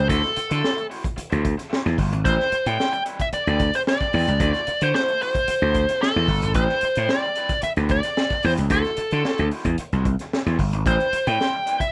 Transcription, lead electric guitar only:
0.09 0.86 A4 medium
2.25 2.67 C5 loud
2.67 2.92 G5 loud
2.93 3.00 G5 loud
3.21 3.26 E5 medium
3.34 3.75 D5 medium
3.75 3.80 C5 medium
3.88 4.40 D5 medium
4.41 4.83 D5 loud
4.83 4.94 C5 medium
4.95 5.21 C5 medium
5.23 6.02 C5 loud
6.02 6.52 A4 medium
6.55 7.11 C5 loud
7.10 7.60 D5 medium
7.63 7.71 E5 loud
7.91 8.46 D5 loud
8.45 8.52 C5 medium
8.72 9.48 A4 medium
10.87 11.28 C5 loud
11.27 11.77 G5 loud
11.81 11.92 E5 medium

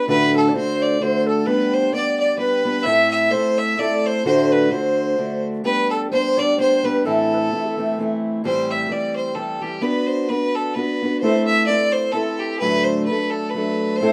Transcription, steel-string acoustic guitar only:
0.07 0.54 D2 medium
0.07 0.55 A2 medium
0.07 0.53 D3 medium
0.07 0.54 A3 medium
0.07 0.54 D4 medium
0.07 0.55 F#4 medium
0.53 0.99 D3 soft
0.53 1.01 A3 medium
0.53 1.00 D4 medium
0.53 1.01 F#4 medium
1.00 1.47 D3 soft
1.00 1.48 A3 medium
1.00 1.47 D4 medium
1.00 1.48 F#4 soft
1.47 1.91 G3 medium
1.47 1.92 B3 medium
1.47 1.93 D4 medium
1.47 1.94 G4 medium
1.92 2.36 G3 soft
1.92 2.37 B3 soft
1.92 2.38 D4 medium
1.92 2.39 G4 soft
2.37 2.64 G3 soft
2.37 2.64 B3 medium
2.37 2.66 D4 medium
2.37 2.66 G4 medium
2.65 2.86 G3 soft
2.65 2.86 B3 medium
2.65 2.87 D4 soft
2.65 2.87 G4 medium
2.86 3.33 A2 medium
2.86 3.31 A3 medium
2.86 3.32 C4 medium
2.86 3.33 E4 medium
2.86 3.34 A4 medium
3.32 3.76 A3 soft
3.32 3.78 C4 medium
3.32 3.78 E4 soft
3.32 3.79 A4 soft
3.77 4.25 A3 medium
3.77 4.26 C4 medium
3.77 4.26 E4 medium
3.77 4.26 A4 medium
4.24 4.72 D2 medium
4.24 4.72 A2 medium
4.24 4.70 D3 medium
4.24 4.71 A3 medium
4.24 4.71 D4 medium
4.24 4.72 F#4 medium
4.71 5.16 D3 medium
4.71 5.18 A3 medium
4.71 5.17 D4 medium
4.71 5.18 F#4 medium
5.18 5.63 D3 medium
5.18 5.64 A3 medium
5.18 5.63 D4 medium
5.18 5.65 F#4 medium
5.64 6.10 G3 medium
5.64 6.11 B3 medium
5.64 6.12 D4 medium
5.64 6.12 G4 medium
6.11 6.36 G3 soft
6.11 6.37 B3 medium
6.11 6.39 D4 medium
6.11 6.39 G4 medium
6.37 6.56 G3 medium
6.37 6.58 B3 medium
6.37 6.59 D4 medium
6.37 6.59 G4 medium
6.58 6.82 G3 medium
6.58 6.83 B3 medium
6.58 6.84 D4 medium
6.58 6.85 G4 medium
6.83 7.04 G3 soft
6.83 7.05 B3 medium
6.83 7.05 D4 medium
6.83 7.06 G4 medium
7.05 7.51 A2 medium
7.05 7.51 E3 medium
7.05 7.53 A3 medium
7.05 7.52 C4 medium
7.05 7.54 E4 medium
7.52 7.75 E3 soft
7.52 7.77 A3 medium
7.52 7.77 C4 soft
7.52 7.79 E4 medium
7.77 7.97 E3 medium
7.77 7.98 A3 medium
7.77 7.98 C4 medium
7.77 7.99 E4 medium
7.98 8.43 E3 medium
7.98 8.45 A3 medium
7.98 8.44 C4 medium
7.98 8.45 E4 medium
8.44 8.90 A2 medium
8.44 8.88 E3 medium
8.44 8.89 G3 medium
8.44 8.90 C4 medium
8.44 8.91 G4 medium
8.89 9.34 E3 soft
8.89 9.36 G3 soft
8.89 9.36 C4 medium
8.89 9.37 G4 medium
9.35 9.60 E3 medium
9.35 9.61 G3 medium
9.35 9.62 C4 medium
9.35 9.63 G4 medium
9.61 9.81 E3 medium
9.61 9.82 G3 medium
9.61 9.82 C4 soft
9.61 9.83 G4 medium
9.81 10.29 B3 medium
9.81 10.29 D4 medium
9.81 10.30 F#4 medium
9.81 10.32 B4 medium
10.29 10.75 B3 soft
10.29 10.76 D4 soft
10.29 10.76 F#4 medium
10.29 10.78 B4 medium
10.76 11.01 B3 medium
10.76 11.02 D4 medium
10.76 11.03 F#4 medium
10.76 11.04 B4 medium
11.02 11.23 B3 soft
11.02 11.23 D4 medium
11.02 11.24 F#4 medium
11.02 11.24 B4 medium
11.23 11.74 A3 medium
11.23 11.68 C4 medium
11.23 11.68 E4 medium
11.23 11.70 A4 medium
11.23 11.70 B4 medium
11.69 12.12 C4 soft
11.69 12.13 E4 medium
11.69 12.15 A4 medium
11.69 12.15 B4 medium
12.13 12.61 C4 medium
12.13 12.61 E4 medium
12.13 12.62 A4 medium
12.13 12.62 B4 medium
12.61 13.08 D2 medium
12.61 13.08 A2 medium
12.61 13.07 F#3 medium
12.61 13.11 A3 medium
12.61 13.09 D4 medium
12.61 13.11 A4 medium
13.09 13.53 F#3 soft
13.09 13.55 A3 medium
13.09 13.55 D4 soft
13.09 13.56 A4 medium
13.55 14.01 F#3 medium
13.55 14.00 A3 medium
13.55 14.02 D4 medium
13.55 14.02 A4 medium
14.01 14.13 A2 medium
14.01 14.13 A3 medium
14.01 14.13 C4 medium
14.01 14.13 E4 medium
14.01 14.13 A4 medium

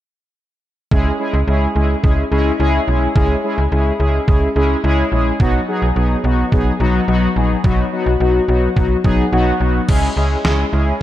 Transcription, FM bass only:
0.91 1.11 C#2 loud
1.33 1.43 C#2 medium
1.47 1.67 C#2 medium
1.76 1.95 C#2 medium
2.04 2.23 C#2 loud
2.32 2.51 C#2 loud
2.60 2.79 C#2 loud
2.88 3.07 B1 medium
3.16 3.35 C#2 loud
3.58 3.68 C#2 medium
3.72 3.91 C#2 loud
4.00 4.19 C#2 medium
4.28 4.47 C#2 medium
4.56 4.75 C#2 medium
4.84 5.04 C#2 loud
5.12 5.32 A#1 medium
5.40 5.60 B1 loud
5.82 5.92 B1 medium
5.96 6.16 B1 loud
6.24 6.44 B1 loud
6.52 6.72 B1 medium
6.80 7.00 B1 loud
7.08 7.28 B1 loud
7.36 7.56 A#1 medium
7.64 7.84 B1 loud
8.06 8.16 B1 medium
8.20 8.40 B1 loud
8.48 8.68 B1 medium
8.76 8.96 B1 loud
9.04 9.24 B1 loud
9.32 9.52 B1 loud
9.60 9.80 B1 medium
9.89 10.08 C#2 loud
10.17 10.36 C#2 medium
10.45 10.64 C#2 loud
10.73 10.92 C#2 loud

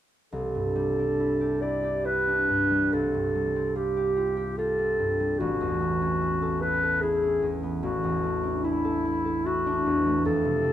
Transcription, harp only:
0.32 2.92 C2 soft
0.55 2.48 G2 soft
0.75 2.69 G3 soft
0.99 2.26 D4 soft
1.20 1.61 E4 soft
1.41 1.82 G4 soft
1.62 2.04 E4 soft
1.83 3.95 G4 soft
2.05 2.96 E4 soft
2.27 2.96 D4 soft
2.49 2.96 G2 soft
2.71 3.34 G3 soft
2.93 5.43 C2 soft
3.14 4.98 G2 soft
3.35 5.19 G3 soft
3.56 4.78 C4 soft
3.75 4.15 F4 soft
3.97 4.35 G4 soft
4.16 4.57 F4 soft
4.37 5.43 G4 soft
4.58 5.43 F4 soft
4.79 5.43 C4 soft
4.99 5.43 G2 soft
5.20 5.44 G3 soft
5.40 7.82 A1 soft
5.61 7.41 E2 soft
5.80 7.62 B3 soft
6.02 7.21 C#4 soft
6.21 6.62 E4 soft
6.42 6.81 A4 soft
6.63 7.02 E4 soft
6.83 8.83 A4 soft
7.03 8.63 E4 soft
7.22 7.86 C#4 soft
7.42 7.86 E2 soft
7.63 7.87 B3 soft
7.83 10.28 A1 soft
8.04 9.85 E2 soft
8.23 10.05 A3 soft
8.43 9.65 D4 soft
8.64 9.04 E4 soft
8.85 9.24 A4 soft
9.05 9.45 E4 soft
9.25 10.73 A4 soft
9.46 10.73 E4 soft
9.66 10.28 D4 soft
9.86 10.28 E2 soft
10.06 10.63 A3 soft
10.25 10.73 F2 soft
10.44 10.73 C3 soft
10.64 10.73 A3 soft

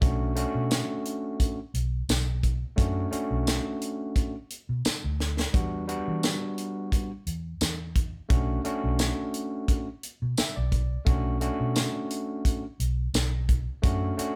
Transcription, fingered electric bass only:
0.02 0.44 B1 loud
0.55 0.82 B2 medium
1.74 2.01 B1 medium
2.09 2.63 B1 medium
2.78 3.05 F#2 loud
3.12 muted fingered electric bass stroke soft
3.30 3.58 B1 medium
4.69 4.81 B2 medium
4.85 muted fingered electric bass stroke soft
5.04 5.43 D2 medium
5.54 5.96 E2 loud
6.08 6.34 E3 medium
7.27 7.53 E2 medium
7.61 8.15 E2 medium
8.30 8.57 B1 loud
8.84 9.11 B1 medium
10.22 10.34 B2 medium
10.38 muted fingered electric bass stroke soft
10.57 10.96 B1 medium
11.07 11.48 B1 medium
11.60 11.87 B2 medium
12.80 13.07 B1 medium
13.14 13.68 B1 medium
13.84 14.11 F#2 medium
14.18 muted fingered electric bass stroke soft

